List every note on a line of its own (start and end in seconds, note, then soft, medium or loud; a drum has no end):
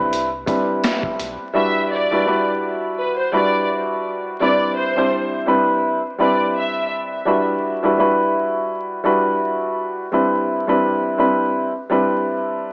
0.00 0.11 B1 loud
0.00 0.27 G3 medium
0.00 0.27 C4 medium
0.00 0.27 D4 medium
0.00 0.27 E4 medium
0.00 0.28 B4 loud
0.13 0.44 C2 medium
0.13 closed hi-hat medium
0.47 1.47 G3 loud
0.47 1.47 C4 medium
0.47 1.47 D4 medium
0.47 1.48 E4 medium
0.47 1.48 B4 medium
0.47 kick medium
0.47 closed hi-hat medium
0.84 snare loud
0.84 closed hi-hat medium
1.03 kick medium
1.20 1.37 B1 loud
1.20 closed hi-hat medium
1.54 2.05 G3 loud
1.54 2.06 D4 medium
1.54 2.06 E4 medium
1.54 2.06 F#4 medium
1.54 2.06 B4 medium
1.54 1.87 E5 loud
1.91 2.43 D5 medium
2.11 2.25 G3 medium
2.11 2.25 D4 medium
2.11 2.26 E4 medium
2.11 2.26 F#4 medium
2.11 2.27 B4 loud
2.26 3.26 G3 medium
2.26 3.26 D4 medium
2.26 3.27 E4 medium
2.26 3.27 F#4 medium
2.26 3.27 B4 loud
2.98 3.16 B4 medium
3.18 3.32 C5 medium
3.32 4.33 G3 loud
3.32 4.33 D4 medium
3.32 4.33 E4 medium
3.32 4.33 F#4 medium
3.32 4.34 B4 loud
3.32 3.67 D5 medium
4.40 4.91 G3 medium
4.40 4.92 C4 medium
4.40 4.92 D4 medium
4.40 4.92 E4 medium
4.40 4.92 B4 loud
4.40 4.74 D5 loud
4.77 5.29 C5 medium
4.96 5.44 G3 medium
4.96 5.44 C4 medium
4.96 5.45 D4 medium
4.96 5.45 E4 medium
4.96 5.45 C5 loud
5.46 5.98 G3 medium
5.46 5.98 C4 medium
5.46 5.99 D4 medium
5.46 5.99 E4 medium
5.46 5.99 B4 loud
6.18 7.19 G3 loud
6.18 7.19 C4 medium
6.18 7.19 D4 medium
6.18 7.19 E4 medium
6.18 7.20 B4 loud
6.18 6.38 D5 medium
6.56 6.88 E5 medium
7.25 7.77 G3 loud
7.25 7.77 D4 medium
7.25 7.77 E4 medium
7.25 7.78 F#4 medium
7.25 7.78 B4 loud
7.83 7.96 G3 loud
7.83 7.97 D4 medium
7.83 7.97 E4 loud
7.83 7.98 F#4 medium
7.83 7.98 B4 loud
7.98 8.98 G3 medium
7.98 8.98 D4 medium
7.98 8.98 E4 medium
7.98 8.98 F#4 medium
7.98 8.99 B4 loud
9.04 10.04 G3 loud
9.04 10.04 D4 medium
9.04 10.05 E4 medium
9.04 10.05 F#4 medium
9.04 10.05 B4 loud
10.12 10.63 G3 medium
10.12 10.63 C4 medium
10.12 10.63 D4 medium
10.12 10.64 E4 medium
10.12 10.64 B4 loud
10.67 11.16 G3 medium
10.67 11.16 C4 medium
10.67 11.16 D4 medium
10.67 11.16 E4 medium
10.67 11.17 B4 loud
11.18 11.69 G3 medium
11.18 11.70 C4 medium
11.18 11.70 D4 medium
11.18 11.70 E4 medium
11.18 11.70 B4 loud
11.89 12.73 G3 loud
11.89 12.73 C4 medium
11.89 12.73 D4 medium
11.89 12.73 E4 medium
11.89 12.73 B4 loud